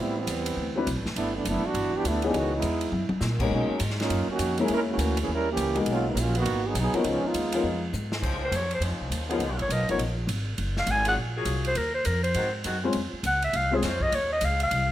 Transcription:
Already playing: upright bass A2
0.00 trombone section G3 B3 C4 E4
0.18 trombone section E3 G3 B3 C4
0.27 upright bass E2, hi-hat pedal, ride
0.46 ride
0.56 upright bass D2
0.76 upright piano F#3 C4 D4 E4 B4
0.87 upright bass B1, hi-hat pedal, ride
0.96 upright bass A1
1.06 upright bass F#1, snare
1.16 upright bass G1, trombone section A3 B3 D4 E4, ride
1.34 trombone section E3 A3 B3 D4
1.45 upright bass F#1, trombone section A3 B3 D4 E4, hi-hat pedal, ride
1.63 trombone section E3 B3 D4 F#4, muted upright bass stroke
1.74 upright bass G1, ride
1.93 trombone section E3 B3 D4 G4, muted upright bass stroke
2.04 upright bass D2, trombone section A3 B3 D4 E4, hi-hat pedal, ride
2.22 upright piano E3 B3 C#4 D#4 G#4, trombone section E3 B3 D4 G4, ride
2.33 upright bass C#2, trombone section D#3 G#3 B3 F#4, ride
2.55 trombone section G#3 B3 D#4 E4
2.62 upright bass E2, hi-hat pedal, ride
2.81 ride
2.92 upright bass F#2, high tom
3.09 muted upright bass stroke, high tom
3.21 upright bass A#2, snare, hi-hat pedal
3.40 upright piano G#3 B3 C#4 D#4 A#4, kick, crash
3.51 upright bass B2, trombone section F#3 A#3 C#4 D#4
3.70 muted upright bass stroke
3.80 upright bass G#2, hi-hat pedal, ride
3.90 snare
4.00 trombone section A#3 C#4 D#4 F4, snare, ride
4.10 upright bass F#2, ride
4.28 trombone section D#3 A#3 C#4 F#4, muted upright bass stroke
4.39 upright bass F2, hi-hat pedal, ride
4.58 trombone section F#3 C#4 D#4 G#4, upright piano G#3 A#3 C#4 E4 A#4, ride
4.68 upright bass E2, trombone section C#4 E4 A#4, ride
4.72 trombone section G#3
4.90 trombone section E3 A#3 C#4 F#4
4.98 upright bass D2, hi-hat pedal, ride
5.17 trombone section E3, ride
5.21 trombone section A#3 C#4 G#4
5.28 upright bass D#2
5.33 trombone section G3 C#4 E4 A#4
5.50 trombone section E3 A#3 C#4 G4
5.57 upright bass C#2, hi-hat pedal, ride
5.75 upright piano G#3 B3 D#4 F#4 A#4, ride
5.85 upright bass B1, ride
5.90 trombone section F#3 A#3 C#4 F4
6.08 trombone section F#3 A#3 B3 D#4
6.15 upright bass A#1, hi-hat pedal, ride
6.20 trombone section F#3 A#3 C#4 F4
6.35 trombone section D#3 A#3 B3 F#4, ride
6.44 upright bass G#1, ride
6.66 trombone section F#3 B3 D#4 G#4
6.74 upright bass B1, hi-hat pedal, ride
6.80 trombone section F#3 B3 D#4 G#4
6.93 upright piano F3 B3 C#4 D#4 A#4, trombone section A#3 F#4, muted upright bass stroke, ride
6.97 trombone section D#3 B3
7.04 upright bass C#2, trombone section F3 G#3 B3 C#4, ride
7.23 trombone section G#3 B3 D#4 F4, muted upright bass stroke
7.34 upright bass D#2, hi-hat pedal, ride
7.52 upright piano F3 B3 C#4 D#4 A#4, ride
7.63 upright bass F2
7.93 upright bass G#2, hi-hat pedal
8.12 snare
8.22 upright bass C#2, saxophone section F3 C#4 D#4 C5, kick, crash
8.44 clarinet C5
8.51 upright bass F2, hi-hat pedal, ride
8.56 clarinet C#5
8.71 clarinet C5, ride
8.80 upright bass F2, saxophone section F3 C#4 D#4 C5, ride
8.90 upright bass C#2
9.01 upright bass C2
9.10 upright bass D#2, hi-hat pedal, ride
9.29 saxophone section F3 B3 D#4 G#4, upright piano F3 B3 C#4 D#4 A#4, ride
9.39 upright bass C#2, ride
9.49 upright bass B1
9.59 upright bass G#1, clarinet C#5, ride
9.69 upright bass B1, saxophone section F3 B3 D#4 A#4, clarinet D#5, hi-hat pedal, ride
9.79 upright bass G#1
9.89 upright bass F1, upright piano F3 B3 C#4 D#4 A#4, clarinet C#5, ride
9.98 upright bass A#1, ride
10.27 upright bass G#1, hi-hat pedal, ride
10.58 upright bass F#1, ride
10.77 clarinet F5, snare
10.86 upright bass G#1, hi-hat pedal, ride
10.91 clarinet G#5
11.05 saxophone section F#3 A#3 F4 G#4, clarinet F#5, ride
11.16 upright bass A#1
11.36 saxophone section F#3 A#3 F4 G#4
11.45 upright bass C2, hi-hat pedal, ride
11.64 clarinet C5, ride
11.75 upright bass D#2, clarinet A#4, ride
11.94 clarinet C5
12.05 upright bass F2, clarinet A#4, hi-hat pedal, ride
12.23 clarinet C5, ride
12.34 upright bass G#2, saxophone section D#3 G#3 C4 F#4, ride
12.64 upright bass F#2, saxophone section D#3 G#3 C4 F#4, hi-hat pedal, ride
12.83 upright piano G#3 C4 C#4 F4 C5
12.93 upright bass F2, ride
13.13 muted upright bass stroke
13.23 upright bass C#2, clarinet F#5, hi-hat pedal, ride
13.42 clarinet E5, ride
13.53 upright bass C2, clarinet F5, ride
13.71 upright piano G#3 C4 C#4 F4 C5
13.75 clarinet G#4
13.82 upright bass F2, saxophone section C#3 G#3 C4 F4, clarinet C5, snare, hi-hat pedal, ride
14.01 clarinet D#5, kick
14.12 upright bass D#2, clarinet C#5, ride
14.33 clarinet D#5
14.41 upright bass C#2, clarinet F5, hi-hat pedal, ride
14.60 clarinet F5, ride
14.71 upright bass C2, ride

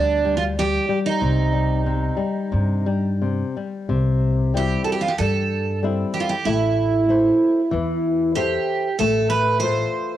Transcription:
Already playing: upright bass D2, nylon-string guitar G3, twelve-string acoustic guitar D4
0.25 nylon-string guitar G3
0.37 twelve-string acoustic guitar F4
0.59 nylon-string guitar G3, twelve-string acoustic guitar G4
0.89 nylon-string guitar G3
1.06 twelve-string acoustic guitar D#4
1.21 upright bass C2, nylon-string guitar C3
1.52 nylon-string guitar G3
1.86 nylon-string guitar C3
2.16 nylon-string guitar G3
2.52 upright bass G2, nylon-string guitar C3
2.86 nylon-string guitar G3
3.21 nylon-string guitar C3
3.57 nylon-string guitar G3
3.89 upright bass C2, nylon-string guitar C3
4.54 nylon-string guitar G3 C4 E4, twelve-string acoustic guitar G4
4.84 twelve-string acoustic guitar A4
4.92 twelve-string acoustic guitar G4
5.01 twelve-string acoustic guitar F4
5.08 twelve-string acoustic guitar G4
5.18 upright bass G2, nylon-string guitar G3, twelve-string acoustic guitar A4
5.83 nylon-string guitar G3 C4 E4
6.14 twelve-string acoustic guitar G4
6.20 twelve-string acoustic guitar F4
6.29 twelve-string acoustic guitar G4
6.45 upright bass A1, nylon-string guitar A3, twelve-string acoustic guitar E4
7.09 nylon-string guitar E4 A4 C5
7.71 upright bass E2, nylon-string guitar E3
8.35 nylon-string guitar E4 A4 C5, twelve-string acoustic guitar G4
8.99 upright bass A1, nylon-string guitar A3, twelve-string acoustic guitar A4
9.30 twelve-string acoustic guitar B4
9.60 nylon-string guitar F4 A4, twelve-string acoustic guitar C5
9.64 nylon-string guitar C5

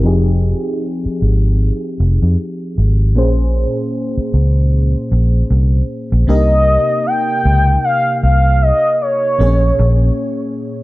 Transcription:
0.03 fingered electric bass F1, fm electric piano F3 C4 D#4 G4 G#4
1.06 muted fingered electric bass stroke
1.22 fingered electric bass G#1
2.00 fingered electric bass F1
2.22 fingered electric bass F2
2.78 fingered electric bass G#1
3.15 fingered electric bass A#1, fm electric piano A#2 A#3 C#4 G#4 C5
4.17 muted fingered electric bass stroke
4.34 fingered electric bass C#2
5.12 fingered electric bass A#1
5.51 fingered electric bass C2
6.12 fingered electric bass A#1
6.27 fingered electric bass C2, fm electric piano C3 A#3 D4 G4 A#4, soft synth lead D#5
6.35 fm electric piano D#4
7.06 soft synth lead G5
7.45 fingered electric bass C#2
7.84 soft synth lead F5
8.23 fingered electric bass C2, soft synth lead F5
8.62 soft synth lead D#5
9.01 soft synth lead C#5
9.39 fingered electric bass A#1, fm electric piano A#2 A#3 C4 G#4 C#5
9.47 fm electric piano C#4
9.79 fingered electric bass A#1

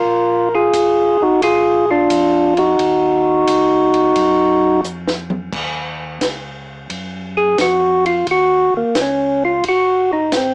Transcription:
Already playing: tonewheel organ F4 A#4
0.04 tonewheel organ A#1
0.55 tonewheel organ F4 G#4
0.73 tonewheel organ G#1, kick, hi-hat pedal, ride
1.20 tonewheel organ G#1 D#4 F#4
1.42 tonewheel organ A#1 F4 G#4, kick, ride
1.91 tonewheel organ D4 F4
2.10 tonewheel organ F2, kick, hi-hat pedal, ride
2.57 tonewheel organ D#4 F#4, ride
2.79 tonewheel organ D#2, kick, ride
3.47 tonewheel organ C#2, kick, hi-hat pedal, ride
3.94 ride
4.16 tonewheel organ F#2, kick, ride
4.84 tonewheel organ F2, hi-hat pedal
5.08 snare
5.30 mid tom
5.53 tonewheel organ D#2, kick, crash
6.21 tonewheel organ C#2, kick, snare, hi-hat pedal, ride
6.90 tonewheel organ F#2, kick, ride
7.37 tonewheel organ G#4
7.58 tonewheel organ F2 F#4, kick, snare, hi-hat pedal, ride
8.06 tonewheel organ F4, ride
8.27 tonewheel organ D#2, kick, ride
8.31 tonewheel organ F#4
8.73 tonewheel organ D#2 A#3
8.95 tonewheel organ C#2, kick, snare, hi-hat pedal, ride
9.01 tonewheel organ C#4
9.45 tonewheel organ F4
9.63 tonewheel organ F#1, kick, ride
9.68 tonewheel organ F#4
10.13 tonewheel organ D#4
10.32 tonewheel organ G#1, kick, snare, hi-hat pedal, ride
10.37 tonewheel organ C4

